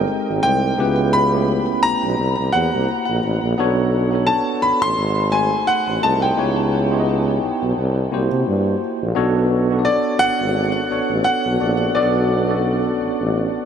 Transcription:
Already playing: G#3 C4 D#4 G4 A4 A#4 C5 G5
0.29 G#1
0.43 C2 G#3 C4 D#4 G4 C5 G5
0.78 C#2 B3 C#4 E4 G4 B4
1.13 B5
1.33 A3 B3 C#4 E4 G4
1.83 B1 A#5
2.04 B1
2.19 C2
2.39 C2
2.52 E2 A#3 E4 F#4 G4 C5 F#5
2.74 C2
3.09 A#1
3.25 A1
3.43 A#1
3.58 B1 B3 D4 F#4 A4 C#5
4.12 B3 D4 F#4 A4 C#5
4.27 A5
4.62 A1 B5
4.82 A1 C6
4.98 G#1
5.32 A3 D#4 F#4 G#4 C5 G#5
5.67 F#5
5.88 A1
6.01 C2 A3 D#4 F#4 G#4 D#5 A5
6.22 G5
6.36 C#2 B3 D#4 E4 G4 C#5
6.91 B3 D#4 E4 G4 C#5
7.00 D#5
7.43 B1
7.62 B1
7.77 C2
8.12 C2 A#3 E4 F#4 G4 C5
8.32 C3
8.48 G2
9.02 A#1
9.15 B1 B3 D4 F#4 A4 C#5
9.70 B3 D4 F#4 A4 B4
9.79 D5
9.85 D5
10.19 G#1 F#5
10.41 G#1
10.90 A1 B3 D4 F#4 A4 C#5
11.10 A1
11.24 F#5
11.46 B1
11.59 A#1 B3 D4 F#4 A4 D5
11.94 B1 B3 D4 F#4 A4 D5
12.48 B3 C#4 F#4 A4 D5
12.55 D4
13.01 A1
13.21 A1

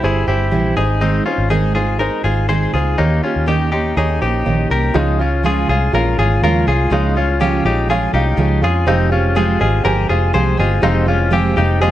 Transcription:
Already playing: E4 G4 A#4 C5
0.02 G1 G3 C4 E4 G4 G#4 C5
0.27 G1 G3 C4 E4 G4 C5 G#5
0.51 A#1 C3 E3 G3 C4 E4 G4 C5 G5
0.76 G#1 C4 D#4 G#4 C5 D#5
1.00 G#2 D#3 G#3 C4 D#4 G#4
1.25 G#3 C4 C#4 D#4 F4 G#4 C5
1.38 G#1
1.50 G#2 D#3 G#3 C4 D#4 G#4 A#4
1.75 G#3 C4 D#4 F4 G#4 C5
1.98 G#3 C4 D#4 G#4 A#4 C5
2.23 G#1 G#3 C4 D#4 F4 G#4 C5
2.48 G#2 D#3 G#3 C4 D#4 G#4 C5
2.73 C#2 G#3 C4 D#4 F4 G#4 C5
2.97 D#2 D#3 A#3 C#4 D#4 G4 C#5
3.22 A#3 C#4 D#4 F4 G4 C#5
3.36 D#2
3.46 D#3 A#3 C#4 D#4 G4 D#5
3.71 A#3 C#4 D#4 G4 C#5 C6
3.95 D#2 D#3 A#3 C#4 D#4 G4 G#4 C#5 A#5
4.08 G5
4.20 A#1 A#3 C#4 D#4 G4 C5
4.45 A#1 D#3 A#3 C#4 D#4 G4 C#5 F5
4.58 D#5
4.69 C2 A#3 C#4 D#4 G4 A#4
4.94 C#2 C#3 F3 G#3 C#4 D#4 F4 G#4 C#5 F5
5.18 G#3 C#4 F4 G#4 C#5 F5
5.43 C#3 F3 G#3 C#4 F4 G#4 C#5 G#5
5.68 C2 G#3 C#4 F4 G#4 C#5 F5
5.93 A#1 F3 G#3 C#4 F4 G#4 A#4 C#5 F5
6.18 G#1 G#3 C#4 F4 G#4 C#5 F5
6.42 D#2 C#3 F3 G#3 C#4 F4 G#4 A#4 C#5 F5
6.67 C2 G#3 C#4 F4 G#4 C#5 F5
6.90 C#2 C#3 F3 G#3 C#4 D#4 F4 G#4 C#5 F5
7.15 G#3 C#4 F4 G#4 C#5 F5
7.40 C#3 F3 G#3 C#4 F4 G4 G#4 C#5 F5
7.64 A#1 G#3 C#4 D#4 F4 G4 G#4 C#5 F5
7.88 F3 G#3 C#4 F4 G#4 C#5 F5
8.13 C2 G#3 C#4 D#4 F4 G4 G#4 C#5 F5
8.37 C#2 C#3 F3 G#3 C#4 F4 G#4 C#5 F5
8.61 F2 G#3 C#4 F4 G#4 C#5 F5
8.86 F1 F3 G#3 C4 D#4 G4 G#4 C5 F5
9.09 G#3 C4 C#4 F4 G4 G#4 C5 F5
9.35 F3 G#3 C4 F4 G4 G#4 C5 F5
9.59 G#1 G#3 C4 F4 G4 G#4 C5 D#5
9.83 G1 F3 G#3 C4 G4 G#4 A#4 C5 G#5
10.09 F1 G#3 C4 F4 G4 G#4 C5 F5
10.33 C2 F3 G#3 C4 G4 G#4 C5 F5
10.57 G1 G#3 C4 F4 G4 G#4 C5 D#5
10.82 F1 F3 G#3 C4 D#4 G4 G#4 C5 F5
11.06 G#3 C4 C#4 F4 G4 G#4 C5 F5
11.30 F3 G#3 C4 G4 G#4 C5 F5
11.56 F1 G#3 C4 D#4 G4 G#4 C5 F5
11.80 F3 G#3 C4 F4 G4 G#4 C5 D#5

